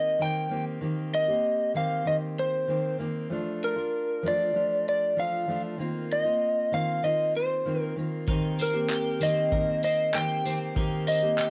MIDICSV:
0, 0, Header, 1, 5, 480
1, 0, Start_track
1, 0, Tempo, 621762
1, 630, Time_signature, 4, 2, 24, 8
1, 8878, End_track
2, 0, Start_track
2, 0, Title_t, "Electric slide guitar"
2, 0, Program_c, 0, 29
2, 0, Note_on_c, 0, 75, 94
2, 168, Note_off_c, 0, 75, 0
2, 170, Note_on_c, 0, 79, 110
2, 496, Note_off_c, 0, 79, 0
2, 884, Note_on_c, 0, 75, 101
2, 1326, Note_off_c, 0, 75, 0
2, 1365, Note_on_c, 0, 77, 111
2, 1600, Note_on_c, 0, 75, 89
2, 1604, Note_off_c, 0, 77, 0
2, 1663, Note_off_c, 0, 75, 0
2, 1848, Note_on_c, 0, 72, 88
2, 2287, Note_off_c, 0, 72, 0
2, 2812, Note_on_c, 0, 70, 81
2, 3294, Note_off_c, 0, 70, 0
2, 3302, Note_on_c, 0, 74, 97
2, 3765, Note_off_c, 0, 74, 0
2, 3774, Note_on_c, 0, 74, 99
2, 4008, Note_off_c, 0, 74, 0
2, 4011, Note_on_c, 0, 77, 106
2, 4335, Note_off_c, 0, 77, 0
2, 4728, Note_on_c, 0, 75, 104
2, 5202, Note_on_c, 0, 77, 106
2, 5212, Note_off_c, 0, 75, 0
2, 5434, Note_on_c, 0, 75, 97
2, 5442, Note_off_c, 0, 77, 0
2, 5654, Note_off_c, 0, 75, 0
2, 5686, Note_on_c, 0, 72, 82
2, 6026, Note_off_c, 0, 72, 0
2, 6026, Note_on_c, 0, 70, 82
2, 6126, Note_off_c, 0, 70, 0
2, 6658, Note_on_c, 0, 70, 79
2, 7126, Note_on_c, 0, 75, 98
2, 7136, Note_off_c, 0, 70, 0
2, 7590, Note_off_c, 0, 75, 0
2, 7599, Note_on_c, 0, 75, 91
2, 7838, Note_on_c, 0, 79, 103
2, 7840, Note_off_c, 0, 75, 0
2, 8168, Note_off_c, 0, 79, 0
2, 8556, Note_on_c, 0, 75, 112
2, 8878, Note_off_c, 0, 75, 0
2, 8878, End_track
3, 0, Start_track
3, 0, Title_t, "Clean electric guitar"
3, 0, Program_c, 1, 27
3, 6631, Note_on_c, 1, 60, 60
3, 6873, Note_on_c, 1, 67, 72
3, 7100, Note_off_c, 1, 60, 0
3, 7592, Note_on_c, 1, 60, 68
3, 7822, Note_off_c, 1, 67, 0
3, 8063, Note_off_c, 1, 60, 0
3, 8552, Note_on_c, 1, 60, 59
3, 8793, Note_on_c, 1, 67, 72
3, 8878, Note_off_c, 1, 60, 0
3, 8878, Note_off_c, 1, 67, 0
3, 8878, End_track
4, 0, Start_track
4, 0, Title_t, "Steel-string acoustic guitar"
4, 0, Program_c, 2, 25
4, 0, Note_on_c, 2, 51, 52
4, 0, Note_on_c, 2, 58, 64
4, 0, Note_on_c, 2, 60, 66
4, 0, Note_on_c, 2, 67, 70
4, 134, Note_off_c, 2, 51, 0
4, 143, Note_on_c, 2, 51, 67
4, 151, Note_off_c, 2, 58, 0
4, 154, Note_off_c, 2, 60, 0
4, 154, Note_on_c, 2, 58, 67
4, 159, Note_off_c, 2, 67, 0
4, 163, Note_on_c, 2, 60, 63
4, 169, Note_on_c, 2, 67, 63
4, 374, Note_off_c, 2, 51, 0
4, 383, Note_on_c, 2, 51, 67
4, 384, Note_off_c, 2, 58, 0
4, 388, Note_off_c, 2, 60, 0
4, 393, Note_on_c, 2, 58, 65
4, 396, Note_off_c, 2, 67, 0
4, 397, Note_on_c, 2, 60, 71
4, 406, Note_on_c, 2, 67, 75
4, 614, Note_off_c, 2, 51, 0
4, 622, Note_off_c, 2, 58, 0
4, 623, Note_on_c, 2, 51, 74
4, 631, Note_on_c, 2, 58, 73
4, 632, Note_off_c, 2, 60, 0
4, 636, Note_off_c, 2, 67, 0
4, 641, Note_on_c, 2, 60, 82
4, 645, Note_on_c, 2, 67, 82
4, 978, Note_off_c, 2, 67, 0
4, 987, Note_off_c, 2, 51, 0
4, 988, Note_on_c, 2, 67, 53
4, 991, Note_off_c, 2, 58, 0
4, 995, Note_off_c, 2, 60, 0
4, 1004, Note_on_c, 2, 60, 53
4, 1010, Note_on_c, 2, 58, 46
4, 1341, Note_off_c, 2, 58, 0
4, 1343, Note_on_c, 2, 51, 69
4, 1349, Note_off_c, 2, 60, 0
4, 1349, Note_off_c, 2, 67, 0
4, 1350, Note_on_c, 2, 58, 74
4, 1359, Note_on_c, 2, 60, 72
4, 1365, Note_on_c, 2, 67, 79
4, 1572, Note_off_c, 2, 51, 0
4, 1581, Note_on_c, 2, 51, 67
4, 1582, Note_off_c, 2, 58, 0
4, 1591, Note_off_c, 2, 60, 0
4, 1591, Note_on_c, 2, 58, 58
4, 1597, Note_off_c, 2, 67, 0
4, 1600, Note_on_c, 2, 60, 63
4, 1607, Note_on_c, 2, 67, 69
4, 2056, Note_off_c, 2, 51, 0
4, 2066, Note_on_c, 2, 51, 62
4, 2071, Note_off_c, 2, 60, 0
4, 2072, Note_off_c, 2, 58, 0
4, 2075, Note_on_c, 2, 58, 64
4, 2078, Note_off_c, 2, 67, 0
4, 2080, Note_on_c, 2, 60, 64
4, 2087, Note_on_c, 2, 67, 71
4, 2292, Note_off_c, 2, 51, 0
4, 2301, Note_on_c, 2, 51, 70
4, 2302, Note_off_c, 2, 58, 0
4, 2309, Note_off_c, 2, 60, 0
4, 2311, Note_on_c, 2, 58, 74
4, 2318, Note_off_c, 2, 67, 0
4, 2318, Note_on_c, 2, 60, 80
4, 2326, Note_on_c, 2, 67, 76
4, 2542, Note_off_c, 2, 51, 0
4, 2545, Note_on_c, 2, 53, 73
4, 2550, Note_off_c, 2, 58, 0
4, 2553, Note_off_c, 2, 60, 0
4, 2554, Note_on_c, 2, 57, 75
4, 2558, Note_off_c, 2, 67, 0
4, 2563, Note_on_c, 2, 62, 83
4, 2568, Note_on_c, 2, 65, 87
4, 2892, Note_off_c, 2, 65, 0
4, 2901, Note_on_c, 2, 65, 58
4, 2907, Note_off_c, 2, 53, 0
4, 2907, Note_off_c, 2, 62, 0
4, 2911, Note_off_c, 2, 57, 0
4, 2916, Note_on_c, 2, 62, 54
4, 3264, Note_on_c, 2, 53, 65
4, 3265, Note_off_c, 2, 65, 0
4, 3272, Note_off_c, 2, 62, 0
4, 3273, Note_on_c, 2, 57, 59
4, 3282, Note_on_c, 2, 62, 70
4, 3290, Note_on_c, 2, 65, 78
4, 3489, Note_off_c, 2, 53, 0
4, 3499, Note_on_c, 2, 53, 54
4, 3501, Note_off_c, 2, 57, 0
4, 3509, Note_off_c, 2, 62, 0
4, 3511, Note_on_c, 2, 57, 61
4, 3513, Note_off_c, 2, 65, 0
4, 3519, Note_on_c, 2, 62, 67
4, 3522, Note_on_c, 2, 65, 71
4, 3985, Note_off_c, 2, 53, 0
4, 3987, Note_off_c, 2, 57, 0
4, 3988, Note_on_c, 2, 53, 63
4, 3993, Note_off_c, 2, 62, 0
4, 3996, Note_on_c, 2, 57, 65
4, 4005, Note_on_c, 2, 62, 63
4, 4007, Note_off_c, 2, 65, 0
4, 4010, Note_on_c, 2, 65, 78
4, 4218, Note_off_c, 2, 53, 0
4, 4227, Note_off_c, 2, 57, 0
4, 4227, Note_on_c, 2, 53, 62
4, 4236, Note_off_c, 2, 62, 0
4, 4236, Note_on_c, 2, 57, 72
4, 4239, Note_off_c, 2, 65, 0
4, 4244, Note_on_c, 2, 62, 78
4, 4251, Note_on_c, 2, 65, 73
4, 4458, Note_off_c, 2, 53, 0
4, 4462, Note_on_c, 2, 51, 75
4, 4469, Note_off_c, 2, 57, 0
4, 4472, Note_on_c, 2, 58, 73
4, 4475, Note_off_c, 2, 62, 0
4, 4475, Note_off_c, 2, 65, 0
4, 4478, Note_on_c, 2, 60, 73
4, 4485, Note_on_c, 2, 65, 81
4, 4815, Note_off_c, 2, 65, 0
4, 4824, Note_on_c, 2, 65, 57
4, 4825, Note_off_c, 2, 51, 0
4, 4828, Note_off_c, 2, 60, 0
4, 4830, Note_off_c, 2, 58, 0
4, 4837, Note_on_c, 2, 60, 45
4, 4847, Note_on_c, 2, 58, 42
4, 5185, Note_off_c, 2, 58, 0
4, 5185, Note_on_c, 2, 51, 63
4, 5186, Note_off_c, 2, 65, 0
4, 5192, Note_off_c, 2, 60, 0
4, 5194, Note_on_c, 2, 58, 66
4, 5201, Note_on_c, 2, 60, 74
4, 5208, Note_on_c, 2, 65, 68
4, 5414, Note_off_c, 2, 51, 0
4, 5423, Note_on_c, 2, 51, 56
4, 5424, Note_off_c, 2, 58, 0
4, 5430, Note_off_c, 2, 60, 0
4, 5433, Note_on_c, 2, 58, 56
4, 5438, Note_off_c, 2, 65, 0
4, 5439, Note_on_c, 2, 60, 65
4, 5446, Note_on_c, 2, 65, 73
4, 5904, Note_off_c, 2, 51, 0
4, 5907, Note_on_c, 2, 51, 64
4, 5913, Note_off_c, 2, 58, 0
4, 5916, Note_on_c, 2, 58, 68
4, 5917, Note_off_c, 2, 65, 0
4, 5920, Note_off_c, 2, 60, 0
4, 5923, Note_on_c, 2, 60, 66
4, 5930, Note_on_c, 2, 65, 64
4, 6135, Note_off_c, 2, 51, 0
4, 6144, Note_on_c, 2, 51, 62
4, 6146, Note_off_c, 2, 58, 0
4, 6155, Note_off_c, 2, 60, 0
4, 6155, Note_on_c, 2, 58, 69
4, 6159, Note_off_c, 2, 65, 0
4, 6163, Note_on_c, 2, 60, 67
4, 6167, Note_on_c, 2, 65, 75
4, 6380, Note_off_c, 2, 51, 0
4, 6388, Note_off_c, 2, 58, 0
4, 6390, Note_on_c, 2, 51, 74
4, 6395, Note_off_c, 2, 60, 0
4, 6397, Note_off_c, 2, 65, 0
4, 6398, Note_on_c, 2, 58, 69
4, 6404, Note_on_c, 2, 60, 79
4, 6414, Note_on_c, 2, 67, 94
4, 6737, Note_off_c, 2, 67, 0
4, 6746, Note_on_c, 2, 67, 55
4, 6748, Note_off_c, 2, 51, 0
4, 6750, Note_off_c, 2, 60, 0
4, 6752, Note_off_c, 2, 58, 0
4, 6760, Note_on_c, 2, 60, 53
4, 6769, Note_on_c, 2, 58, 43
4, 7102, Note_on_c, 2, 51, 66
4, 7103, Note_off_c, 2, 58, 0
4, 7107, Note_off_c, 2, 67, 0
4, 7112, Note_on_c, 2, 58, 73
4, 7113, Note_off_c, 2, 60, 0
4, 7121, Note_on_c, 2, 60, 65
4, 7128, Note_on_c, 2, 67, 76
4, 7335, Note_off_c, 2, 51, 0
4, 7345, Note_off_c, 2, 58, 0
4, 7345, Note_on_c, 2, 51, 59
4, 7352, Note_off_c, 2, 60, 0
4, 7355, Note_on_c, 2, 58, 64
4, 7357, Note_off_c, 2, 67, 0
4, 7362, Note_on_c, 2, 60, 62
4, 7367, Note_on_c, 2, 67, 64
4, 7815, Note_off_c, 2, 51, 0
4, 7825, Note_on_c, 2, 51, 61
4, 7829, Note_off_c, 2, 58, 0
4, 7830, Note_off_c, 2, 60, 0
4, 7832, Note_on_c, 2, 58, 61
4, 7837, Note_off_c, 2, 67, 0
4, 7839, Note_on_c, 2, 60, 74
4, 7848, Note_on_c, 2, 67, 71
4, 8055, Note_off_c, 2, 51, 0
4, 8063, Note_off_c, 2, 58, 0
4, 8064, Note_on_c, 2, 51, 64
4, 8070, Note_off_c, 2, 60, 0
4, 8072, Note_on_c, 2, 58, 73
4, 8077, Note_off_c, 2, 67, 0
4, 8079, Note_on_c, 2, 60, 72
4, 8086, Note_on_c, 2, 67, 72
4, 8289, Note_off_c, 2, 51, 0
4, 8298, Note_on_c, 2, 51, 86
4, 8300, Note_off_c, 2, 58, 0
4, 8307, Note_off_c, 2, 60, 0
4, 8309, Note_on_c, 2, 58, 74
4, 8313, Note_off_c, 2, 67, 0
4, 8316, Note_on_c, 2, 60, 79
4, 8323, Note_on_c, 2, 67, 85
4, 8656, Note_off_c, 2, 67, 0
4, 8663, Note_off_c, 2, 51, 0
4, 8666, Note_on_c, 2, 67, 56
4, 8667, Note_off_c, 2, 60, 0
4, 8668, Note_off_c, 2, 58, 0
4, 8676, Note_on_c, 2, 60, 49
4, 8688, Note_on_c, 2, 58, 44
4, 8878, Note_off_c, 2, 58, 0
4, 8878, Note_off_c, 2, 60, 0
4, 8878, Note_off_c, 2, 67, 0
4, 8878, End_track
5, 0, Start_track
5, 0, Title_t, "Drums"
5, 6389, Note_on_c, 9, 36, 117
5, 6466, Note_off_c, 9, 36, 0
5, 6629, Note_on_c, 9, 54, 65
5, 6706, Note_off_c, 9, 54, 0
5, 6867, Note_on_c, 9, 39, 127
5, 6944, Note_off_c, 9, 39, 0
5, 7107, Note_on_c, 9, 54, 75
5, 7185, Note_off_c, 9, 54, 0
5, 7350, Note_on_c, 9, 36, 110
5, 7427, Note_off_c, 9, 36, 0
5, 7588, Note_on_c, 9, 54, 77
5, 7666, Note_off_c, 9, 54, 0
5, 7827, Note_on_c, 9, 39, 122
5, 7904, Note_off_c, 9, 39, 0
5, 8072, Note_on_c, 9, 54, 65
5, 8149, Note_off_c, 9, 54, 0
5, 8308, Note_on_c, 9, 36, 114
5, 8386, Note_off_c, 9, 36, 0
5, 8550, Note_on_c, 9, 54, 62
5, 8628, Note_off_c, 9, 54, 0
5, 8786, Note_on_c, 9, 39, 118
5, 8863, Note_off_c, 9, 39, 0
5, 8878, End_track
0, 0, End_of_file